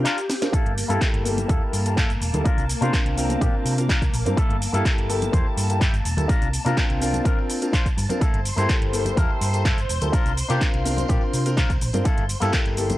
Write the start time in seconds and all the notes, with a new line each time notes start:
Already playing: G4 G5
0.04 D4 F4 A#4, clap, closed hi-hat, cabasa
0.18 closed hi-hat, cabasa
0.28 muted clean electric guitar stroke, snare, open hi-hat, cabasa
0.41 C4 D4 F4 A#4, snare, closed hi-hat, cabasa
0.52 A#3 E4 A4 A5, muted fingered electric bass stroke, kick, closed hi-hat, cabasa
0.65 G1, closed hi-hat, tambourine
0.78 open hi-hat, cabasa
0.88 G2 A#3 E4 G4 A4, closed hi-hat, tambourine, high conga, cabasa
1.01 kick, clap, closed hi-hat, cabasa
1.13 G1, closed hi-hat, tambourine
1.24 A#3 E4 G4 A4, muted clean electric guitar stroke, open hi-hat, high conga, cabasa
1.37 closed hi-hat, tambourine, high conga, low conga, cabasa
1.48 E2 A#3 E4 G4 A4, kick, closed hi-hat, cabasa
1.61 tambourine
1.72 G2, muted clean electric guitar stroke, open hi-hat, cabasa
1.85 A#3 E4 G4 A4, closed hi-hat, tambourine, cabasa
1.96 A#3 E4 A4, kick, clap, closed hi-hat, cabasa
2.10 G1, closed hi-hat, tambourine, cabasa
2.20 E1, muted clean electric guitar stroke, open hi-hat, cabasa
2.33 D2 A#3 E4 G4 A4, closed hi-hat, tambourine, low conga, cabasa
2.44 D4 F4 A#4, kick, closed hi-hat, cabasa
2.57 C2, closed hi-hat, tambourine, cabasa
2.69 open hi-hat, cabasa
2.81 C3 C4 D4 F4 A#4 C5, closed hi-hat, tambourine, high conga, cabasa
2.93 C4 D4, kick, clap, closed hi-hat, tambourine, cabasa
3.05 C2, closed hi-hat, tambourine
3.16 C4 D4 F4 A#4, muted clean electric guitar stroke, open hi-hat, high conga, cabasa
3.29 closed hi-hat, tambourine, high conga, low conga, cabasa
3.40 A#2 A#3 C4 D4 F4 G4, kick, closed hi-hat, tambourine, cabasa
3.53 tambourine
3.64 C3, muted clean electric guitar stroke, open hi-hat, cabasa
3.77 C4 D4 F4 A#4, closed hi-hat, tambourine, cabasa
3.89 D4 F4 A#4, kick, clap, closed hi-hat, cabasa
4.02 C2, kick, closed hi-hat, cabasa
4.12 A#1, muted clean electric guitar stroke, open hi-hat, cabasa
4.25 G2 C4 D4 F4 A#4, closed hi-hat, tambourine, low conga, cabasa
4.36 A#3 E4 A4, kick, closed hi-hat, tambourine, cabasa
4.49 G1, closed hi-hat, tambourine
4.62 open hi-hat, cabasa
4.73 G2 A#3 E4 G4 A4, closed hi-hat, tambourine, high conga, cabasa
4.85 E4 A4, kick, clap, closed hi-hat, cabasa
4.97 G1, closed hi-hat, tambourine
5.08 A#3 E4 G4 A4, muted clean electric guitar stroke, open hi-hat, high conga, cabasa
5.22 closed hi-hat, tambourine, high conga, low conga, cabasa
5.32 E2 A#3 E4 G4 A4 C5, kick, closed hi-hat, tambourine, cabasa
5.46 tambourine
5.56 G2, muted clean electric guitar stroke, open hi-hat, cabasa
5.69 A#3 E4 G4 A4, closed hi-hat, tambourine, cabasa
5.80 A#3 E4 G4, kick, clap, closed hi-hat, cabasa
5.93 G1, closed hi-hat, tambourine, cabasa
6.04 E1, muted clean electric guitar stroke, open hi-hat, cabasa
6.17 D2 A#3 E4 G4 A4, closed hi-hat, tambourine, low conga, cabasa
6.28 D4 F4 A#4, kick, closed hi-hat, tambourine, high conga, cabasa
6.41 C2, closed hi-hat, tambourine, cabasa
6.54 open hi-hat, cabasa
6.65 C3 C4 D4 F4 A#4, closed hi-hat, tambourine, high conga, cabasa
6.77 kick, clap, closed hi-hat, tambourine, cabasa
6.90 C2, closed hi-hat, tambourine
7.01 C4 D4 F4 A#4, muted clean electric guitar stroke, open hi-hat, high conga, cabasa
7.13 closed hi-hat, tambourine, high conga, low conga, cabasa
7.24 C4 D4 F4 A#4, kick, closed hi-hat, tambourine, cabasa
7.38 tambourine
7.48 muted clean electric guitar stroke, open hi-hat, cabasa
7.61 C4 D4 F4 A#4, closed hi-hat, tambourine, cabasa
7.72 D4 F4 C5, kick, clap, closed hi-hat, cabasa
7.85 kick, closed hi-hat, tambourine, cabasa
7.96 G2, muted clean electric guitar stroke, open hi-hat, cabasa
8.09 C4 D4 F4 A#4, closed hi-hat, tambourine, low conga, cabasa
8.20 A#3 E4 A4 C5 C6, muted fingered electric bass stroke, kick, closed hi-hat, cabasa
8.33 G1, closed hi-hat, tambourine
8.45 open hi-hat, cabasa
8.56 G2 A#3 E4 G4 A4 C5, closed hi-hat, tambourine, high conga, cabasa
8.69 A#3 E4, kick, clap, closed hi-hat, tambourine, cabasa
8.81 G1, closed hi-hat, tambourine
8.92 A#3 E4 G4 A4, muted clean electric guitar stroke, open hi-hat, high conga, cabasa
9.06 closed hi-hat, tambourine, high conga, low conga, cabasa
9.16 E2 A#3 E4 G4 A#4 A5, kick, closed hi-hat, tambourine, cabasa
9.29 tambourine
9.40 G2, muted clean electric guitar stroke, open hi-hat, cabasa
9.53 A#3 E4 G4 A4, closed hi-hat, tambourine, cabasa
9.64 A#3 E4 A4, kick, clap, closed hi-hat, cabasa
9.77 G1, closed hi-hat, tambourine, cabasa
9.88 E1, muted clean electric guitar stroke, open hi-hat, cabasa
10.01 D2 A#3 E4 G4 A4, closed hi-hat, tambourine, low conga, cabasa
10.12 D4 F4 A#4, muted fingered electric bass stroke, kick, closed hi-hat, tambourine, cabasa
10.25 C2, closed hi-hat, tambourine, cabasa
10.37 open hi-hat, cabasa
10.48 C3 C4 D4 F4 G4 A#4, closed hi-hat, tambourine, high conga, cabasa
10.60 C4 D4 F4 A#4, kick, clap, closed hi-hat, tambourine, cabasa
10.73 C2, closed hi-hat, tambourine
10.84 C4 D4 F4 A#4, muted clean electric guitar stroke, open hi-hat, high conga, cabasa
10.97 closed hi-hat, tambourine, high conga, low conga, cabasa
11.08 A#2 C4 D4 F4 G4 A#4, kick, closed hi-hat, tambourine, cabasa
11.21 tambourine
11.32 C3, muted clean electric guitar stroke, open hi-hat, cabasa
11.45 C4 D4 F4 A#4, closed hi-hat, tambourine, cabasa
11.56 D4 F4 A#4, kick, clap, closed hi-hat, tambourine, cabasa
11.69 C2, kick, closed hi-hat, tambourine, cabasa
11.80 A#1, muted clean electric guitar stroke, open hi-hat, cabasa
11.93 G2 C4 D4 F4 A#4, closed hi-hat, tambourine, low conga, cabasa
12.04 A#3 E4 A4, kick, closed hi-hat, tambourine, cabasa
12.17 G1, closed hi-hat, tambourine
12.29 open hi-hat, cabasa
12.40 G2 A#3 E4 G4 A4, closed hi-hat, tambourine, high conga, cabasa
12.53 A#3 G4 A4, kick, clap, closed hi-hat, tambourine, cabasa
12.65 G1, closed hi-hat, tambourine
12.76 A#3 E4 G4 A4, muted clean electric guitar stroke, open hi-hat, high conga, cabasa
12.90 closed hi-hat, tambourine, high conga, low conga, cabasa